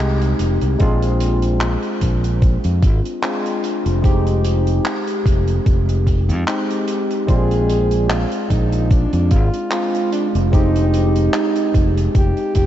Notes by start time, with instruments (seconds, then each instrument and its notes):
Already playing: fingered electric bass C2
0.00 tine electric piano G#3 C4 D#4 G4
0.22 closed hi-hat
0.39 fingered electric bass F1, closed hi-hat
0.61 fingered electric bass C2, closed hi-hat
0.79 fingered electric bass A#1, tine electric piano G#3 C4 D4 F4, kick, closed hi-hat
1.02 closed hi-hat
1.20 closed hi-hat
1.42 closed hi-hat
1.61 clap, closed hi-hat
1.83 closed hi-hat
2.01 fingered electric bass A#1, kick, closed hi-hat
2.24 closed hi-hat
2.42 kick, closed hi-hat
2.64 fingered electric bass F2, closed hi-hat
2.82 fingered electric bass G#1, kick, closed hi-hat
3.06 closed hi-hat
3.22 tine electric piano G#3 C4 D4 F4, clap, closed hi-hat
3.46 closed hi-hat
3.64 closed hi-hat
3.86 fingered electric bass F1, closed hi-hat
4.02 tine electric piano G#3 C4 D#4 G4, kick, closed hi-hat
4.27 closed hi-hat
4.44 closed hi-hat
4.67 closed hi-hat
4.85 clap, closed hi-hat
5.07 closed hi-hat
5.26 fingered electric bass F1, kick, closed hi-hat
5.47 closed hi-hat
5.66 fingered electric bass F1, kick, closed hi-hat
5.89 closed hi-hat
6.07 kick, closed hi-hat
6.29 fingered electric bass F2, closed hi-hat
6.47 tine electric piano G#3 C4 D#4 G4, clap, closed hi-hat
6.71 closed hi-hat
6.88 closed hi-hat
7.11 closed hi-hat
7.27 fingered electric bass A#1, tine electric piano G#3 C4 F4 D5, alto saxophone G#4, kick, closed hi-hat
7.51 closed hi-hat
7.70 closed hi-hat
7.91 closed hi-hat
8.09 alto saxophone F4, clap, closed hi-hat
8.31 closed hi-hat
8.50 fingered electric bass A#1, alto saxophone D#4, kick, closed hi-hat
8.72 closed hi-hat
8.90 alto saxophone D4, kick, closed hi-hat
9.13 fingered electric bass F2, closed hi-hat
9.31 fingered electric bass G#1, alto saxophone F4, kick, closed hi-hat
9.54 closed hi-hat
9.71 tine electric piano G#3 C4 D4 F4, alto saxophone F4, clap, closed hi-hat
9.95 closed hi-hat
10.12 alto saxophone D4, closed hi-hat
10.35 fingered electric bass F1, closed hi-hat
10.51 tine electric piano G#3 C4 D#4 G4, alto saxophone D#4, kick, closed hi-hat
10.76 closed hi-hat
10.94 closed hi-hat
11.16 closed hi-hat
11.34 alto saxophone D#4, clap, closed hi-hat
11.56 closed hi-hat
11.75 fingered electric bass F1, kick, closed hi-hat
11.98 closed hi-hat
12.15 fingered electric bass F1, alto saxophone G4, kick, closed hi-hat
12.37 closed hi-hat
12.55 fingered electric bass F1, alto saxophone G4, kick, closed hi-hat